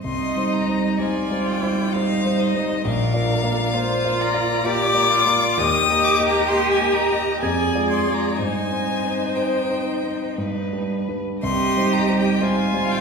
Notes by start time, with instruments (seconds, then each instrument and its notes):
0.03 grand piano C2, cello D#4, violin D#5 C6
0.37 grand piano G3 D#4 C5
0.53 violin A#5
0.68 grand piano G3 D#4 C5
0.98 grand piano G3 D#4 C5, cello F4, violin D5 G#5
1.31 grand piano G3 D#4 C5
1.48 violin G5
1.63 grand piano G3 D#4 C5
1.93 grand piano G3 D#4 C5, cello D#4, violin C5 F5
2.25 grand piano G3 D#4 C5
2.40 violin D#5
2.54 grand piano G3 D#4 C5
2.83 grand piano A#1, cello D4, violin A#4 F5
3.14 grand piano A#3 F4 D5
3.43 grand piano A#3 F4 D5
3.73 grand piano A#3 F4 D5, cello F4, violin C5
4.04 grand piano A#3 F4 D5
4.20 violin D5 A#5
4.34 grand piano A#3 F4 D5
4.64 grand piano A#3 F4 D5, cello G4, violin D6
4.94 grand piano A#3 F4 D5
5.11 cello F4
5.26 grand piano A#3 F4 D5
5.57 grand piano D#2, cello G4, violin D#5 D#6
5.89 grand piano A#3 G4 D#5
6.04 violin D6
6.19 grand piano A#3 G4 D#5
6.27 violin A#5
6.48 grand piano A#3 G4 D#5, violin D#5 C6
6.71 violin G#5
6.81 grand piano A#3 G4 D#5
6.94 violin A#5
7.11 grand piano A#3 G4 D#5
7.41 grand piano F2, cello G#4, violin D5 G#5
7.75 grand piano G#3 F4 D5
7.90 violin C6
8.07 grand piano G#3 F4 D5
8.14 violin A#5
8.37 grand piano G2, cello D#4, violin C5 G#5
8.70 grand piano C4 D#4 C5
9.03 grand piano C4 D#4 C5
9.35 grand piano C4 D#4 C5, violin G5
9.69 grand piano C4 D#4 C5
10.03 grand piano C4 D#4 C5
10.38 grand piano G2, violin B4
10.73 grand piano G3 D4 B4
11.09 grand piano G3 D4 B4
11.42 grand piano C2, cello G4, violin D#5 C6
11.77 grand piano G3 D#4 C5
11.93 violin A#5
12.08 grand piano G3 D#4 C5
12.20 violin G5
12.40 grand piano G3 D#4 C5, cello F4, violin F5
12.45 violin G#5
12.73 grand piano G3 D#4 C5
12.91 violin G5